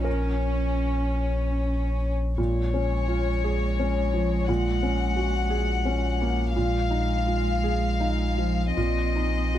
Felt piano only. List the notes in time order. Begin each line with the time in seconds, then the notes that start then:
Already playing: F3
0.04 A#4
2.38 A#2
2.74 C#4
3.08 F4
3.44 G#4
3.79 C#4
4.14 F3
4.49 A#2
4.83 C#4
5.16 F#4
5.50 G#4
5.85 C#4
6.21 A#3
6.56 A#2
6.91 D#4
7.27 F4
7.64 G#4
8.00 D#4
8.38 F3
8.77 A#2
9.16 D#4
9.55 F#4